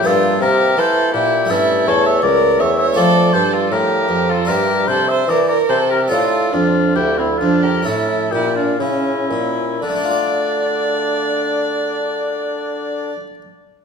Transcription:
<<
  \new Staff \with { instrumentName = "Oboe" } { \time 4/4 \key d \minor \tempo 4 = 72 a'8 bes'8 c''8 g'8 a'8 cis''16 e''16 d''8 e''16 e''16 | d''8 c''16 a'16 bes'8. a'16 bes'8 c''16 e''16 d''16 d''16 c''16 bes'16 | a'8 f'8 g'16 e'16 f'16 bes'16 a'8 g'16 f'16 e'4 | d'1 | }
  \new Staff \with { instrumentName = "Violin" } { \time 4/4 \key d \minor f'8 g'8 a'8 e'8 e'8 a'16 cis''16 bes'8 cis''16 cis''16 | a'8 a'16 f'16 g'8. f'16 g'8 a'16 c''16 bes'16 bes'16 a'16 g'16 | f'8 d'8 e'16 c'16 d'16 g'16 e'8 e'16 d'16 cis'4 | d''1 | }
  \new Staff \with { instrumentName = "Harpsichord" } { \time 4/4 \key d \minor <bes e'>2 <a cis' e'>2 | <a d' f'>2 <d' e'>2 | <d' f'>2 <cis' e'>2 | <d a d' f' d''>1 | }
  \new Staff \with { instrumentName = "Harpsichord" } { \clef bass \time 4/4 \key d \minor g,8 c8 e8 bes,8 g,8 e,8 cis,8 e,8 | f,8 g,8 a,8 f,8 g,8 c8 e8 c8 | a,8 f,8 d,8 f,8 a,8 bes,8 cis8 bes,8 | r1 | }
  \new Staff \with { instrumentName = "Bassoon" } { \clef bass \time 4/4 \key d \minor g,8 c8 e8 bes,8 g,8 e,8 cis,8 e,8 | f,8 g,8 a,8 f,8 g,8 c8 e8 c8 | a,8 f,8 d,8 f,8 a,8 bes,8 cis8 bes,8 | d1 | }
>>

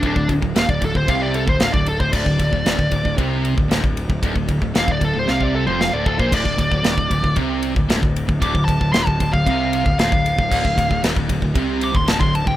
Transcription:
<<
  \new Staff \with { instrumentName = "Lead electric guitar" } { \time 4/4 \key d \minor \tempo 4 = 114 d'8 r8 f''16 d''16 a'16 c''16 f''16 d''16 a'16 c''16 f''16 d''16 a'16 c''16 | d''2 r2 | r4 f''16 d''16 a'16 c''16 f''16 d''16 a'16 c''16 f''16 d''16 a'16 c''16 | d''2 r2 |
d'''8 a''8 c'''16 a''8 f''4~ f''16 f''4~ | f''4 r4. d'''16 c'''16 a''16 c'''16 a''16 g''16 | }
  \new Staff \with { instrumentName = "Distorted electric guitar" } { \clef bass \time 4/4 \key d \minor d,16 d,16 d,16 d,16 ees,16 d,16 d,16 d,16 c8. d,16 d,16 d,8 d,16 | d,16 d,16 d,16 d,16 ees,16 d,16 d,16 d,16 c8. d,16 d,16 d,8 d,16 | d,16 d,16 d,16 d,16 ees,16 d,16 d,16 d,16 c8. f,8 d,8 bes,16 | d,16 d,16 d,16 d,16 ees,16 d,16 d,16 d,16 c8. d,16 d,16 d,8 d,16 |
d,16 d,16 d,16 d,16 ees,16 d,16 d,16 d,16 c8. d,16 d,16 d,8 d,16 | d,16 d,16 d,16 d,16 ees,16 d,16 d,16 d,16 c8. d,16 d,16 d,8 d,16 | }
  \new Staff \with { instrumentName = "Distorted electric guitar" } { \clef bass \time 4/4 \key d \minor d,16 d,16 d,16 d,16 ees,16 d,16 d,16 d,16 c8. d,16 d,16 d,8 d,16 | d,16 d,16 d,16 d,16 ees,16 d,16 d,16 d,16 c8. d,16 d,16 d,8 d,16 | d,16 d,16 d,16 d,16 ees,16 d,16 d,16 d,16 c8. f,8 d,8 bes,16 | d,16 d,16 d,16 d,16 ees,16 d,16 d,16 d,16 c8. d,16 d,16 d,8 d,16 |
d,16 d,16 d,16 d,16 ees,16 d,16 d,16 d,16 c8. d,16 d,16 d,8 d,16 | d,16 d,16 d,16 d,16 ees,16 d,16 d,16 d,16 c8. d,16 d,16 d,8 d,16 | }
  \new Staff \with { instrumentName = "Picked electric bass" } { \clef bass \time 4/4 \key d \minor d,,16 d,,16 d,,16 d,,16 ees,,16 d,,16 d,,16 d,,16 c,8. d,,16 d,,16 d,,8 d,,16 | d,,16 d,,16 d,,16 d,,16 ees,,16 d,,16 d,,16 d,,16 c,8. d,,16 d,,16 d,,8 d,,16 | d,,16 d,,16 d,,16 d,,16 ees,,16 d,,16 d,,16 d,,16 c,8. f,,8 d,,8 bes,,16 | d,,16 d,,16 d,,16 d,,16 ees,,16 d,,16 d,,16 d,,16 c,8. d,,16 d,,16 d,,8 d,,16 |
d,,16 d,,16 d,,16 d,,16 ees,,16 d,,16 d,,16 d,,16 c,8. d,,16 d,,16 d,,8 d,,16 | d,,16 d,,16 d,,16 d,,16 ees,,16 d,,16 d,,16 d,,16 c,8. d,,16 d,,16 d,,8 d,,16 | }
  \new DrumStaff \with { instrumentName = "Drums" } \drummode { \time 4/4 <bd cymr>16 bd16 <bd cymr>16 bd16 <cymr sn>16 bd16 <bd cymr>16 bd16 <bd cymr>8 cymr16 bd16 <cymr sn>16 bd16 cymr16 bd16 | <cymc bd>16 bd16 <bd cymr>16 bd16 <cymr sn>16 bd16 <bd cymr>16 bd16 <bd cymr>8 cymr16 bd16 <cymr sn>16 bd16 cymr16 bd16 | <bd cymr>16 bd16 <bd cymr>16 bd16 <cymr sn>16 bd16 <bd cymr>8 sn16 bd8 toml16 sn8 bd16 bd16 | <cymc bd cymr>16 bd16 <bd cymr>16 bd16 <cymr sn>16 bd16 <bd cymr>16 bd16 <bd cymr>8 cymr16 bd16 <cymr sn>16 bd16 cymr16 bd16 |
<bd cymr>16 bd16 <bd cymr>16 bd16 <cymr sn>16 bd16 <bd cymr>16 bd16 <bd cymr>8 cymr16 bd16 <cymr sn>16 bd16 cymr16 bd16 | <cymc bd>16 bd16 <bd cymr>16 bd16 <cymr sn>16 bd16 <bd cymr>16 bd16 <bd cymr>8 cymr16 bd16 <cymr sn>16 bd16 cymr16 bd16 | }
>>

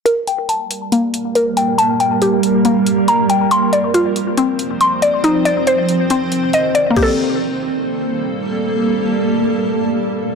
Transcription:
<<
  \new Staff \with { instrumentName = "Synth pluck" } { \time 4/4 \key g \minor \tempo 4 = 139 bes'8 g''8 a''4 bes4 bes'8 g''8 | a''8 g''8 g'4 bes4 bes''8 g''8 | c'''8 d''8 f'4 c'4 c'''8 d''8 | ees'8 d''8 c''4 c'4 ees''8 d''8 |
<bes g' a'>1~ | <bes g' a'>1 | }
  \new Staff \with { instrumentName = "Ambient pad" } { \time 4/4 \key g \minor <g bes bes'>1~ | <g bes bes'>1 | <c' c''>1~ | <c' c''>1 |
<g bes a'>1~ | <g bes a'>1 | }
  \new DrumStaff \with { instrumentName = "Drums" } \drummode { \time 4/4 hh8 hh8 hh8 hh8 hh8 hh8 hh8 hh8 | hh8 hh8 hh8 hh8 hh8 hh8 hh8 hh8 | hh8 hh8 hh8 hh8 hh8 hh8 hh8 hh8 | hh8 hh8 hh8 hh8 hh8 hh8 hh8 hh8 |
<cymc bd>4 r4 r4 r4 | r4 r4 r4 r4 | }
>>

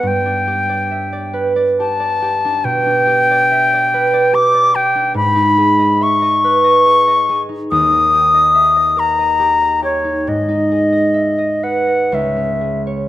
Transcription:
<<
  \new Staff \with { instrumentName = "Flute" } { \time 3/4 \key g \major \tempo 4 = 70 g''4. r8 a''4 | g''2 d'''8 g''8 | \key gis \minor b''4 cis'''2 | dis'''4. ais''4 cis''8 |
dis''4. fis''8 e''8 r8 | }
  \new Staff \with { instrumentName = "Harp" } { \time 3/4 \key g \major <g, b g' b'>16 d'16 g'16 d''16 e''16 d''16 b'16 d''16 g'16 d''16 g'16 d'16 | b,16 d'16 g'16 d''16 e''16 d''16 b'16 d''16 g'16 d''16 g'16 d'16 | \key gis \minor gis,16 dis'16 gis'16 dis''16 e''16 dis''16 b'16 dis''16 gis'16 dis''16 gis'16 dis'16 | dis,16 dis'16 g'16 dis''16 e''16 dis''16 ais'16 dis''16 g'16 dis''16 g'16 dis'16 |
gis,16 dis'16 gis'16 dis''16 e''16 dis''16 b'16 dis''16 cis,16 cis'16 gis'16 cis''16 | }
>>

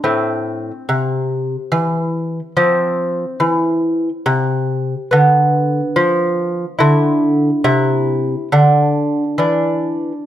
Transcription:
<<
  \new Staff \with { instrumentName = "Lute" } { \time 3/4 \key a \minor \tempo 4 = 70 c'2. | \key f \lydian c'2. | b2 e'4 | e'4 d'4 d'4 | }
  \new Staff \with { instrumentName = "Lute" } { \clef bass \time 3/4 \key a \minor a,4 c4 e4 | \key f \lydian f4 e4 c4 | d4 f4 d4 | c4 d4 e4 | }
>>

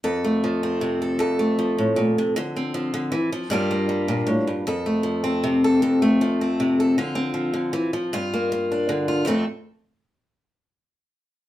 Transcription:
\new Staff \with { instrumentName = "Steel-string acoustic guitar" } { \clef bass \time 12/8 \key f \major \tempo 4. = 104 << { a'8 a4 c'4 a'8 a'8 a2~ a8 | r8 c'2~ c'8 <g bes d' f'>8 bes2~ bes8 | a'8 a4 c'4 a'8 a'8 a4 c'4 a'8 | f'8 c'2~ c'8 f'8 bes4 d'4 f'8 |
<f a c' a'>8 r1 r4. | } \\ { f,4 f4 c4 f,4 f8 a,8 bes,8 c8 | d4 f8 d8 e8 f8 g,4 g8 bes,8 a,8 g,8 | f,4 f4 c4 f,4 f4 c4 | d4 f8 d8 e8 f8 g,2 d4 |
f,8 r1 r4. | } >> }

